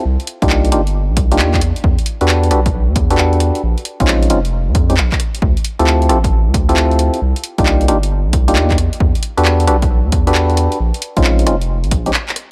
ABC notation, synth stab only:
X:1
M:4/4
L:1/16
Q:"Swing 16ths" 1/4=134
K:Ephr
V:1 name="Synth stab"
z3 [_B,D_EFG]3 [B,DEFG] z4 [B,DEFG]3 z2 | z3 [D^FGAB]3 [DFGAB] z4 [DFGAB]4- [DFGAB] | z3 [_A,C_D_EF]3 [A,CDEF] z4 [A,CDEG] z4 | z3 [CEFGA]3 [CEFGA] z4 [CEFGA]4- [CEFGA] |
z3 [_B,D_EFG]3 [B,DEFG] z4 [B,DEFG]3 z2 | z3 [D^FGAB]3 [DFGAB] z4 [DFGAB]4- [DFGAB] | z3 [_A,C_D_EF]3 [A,CDEF] z4 [A,CDEG] z4 |]